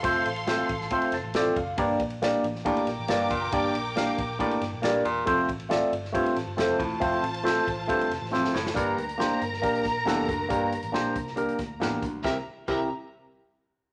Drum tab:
CC |----------------|----------------|----------------|----------------|
RD |x-xxx-x-xxx-x-x-|x-xxx-x-xxx-x-x-|x-x-x-x-xxx-x-x-|x-xxx-x-xxx-x-x-|
HH |p---------------|----------------|----------------|----------------|
SD |----o--o--o-o---|----o--o--o-o---|----o-----o-o---|----o--o--o-o---|
BD |o-----o-o-----o-|o-o-----o-----o-|o-----o-o-------|o-o-----o-----o-|

CC |----------------|----------------|----------------|----x-----------|
RD |x-xxx-x-xxx-----|----------------|----------------|----------------|
HH |----------------|x-xx--x-xxx---x-|x-xx--x-xxx---x-|----------------|
SD |----o-----o-oooo|----o--o--o-o---|----o--o--o-o---|o---------------|
BD |o-----o-o-------|o-------o-o---o-|o-----o---o---o-|o---o-----------|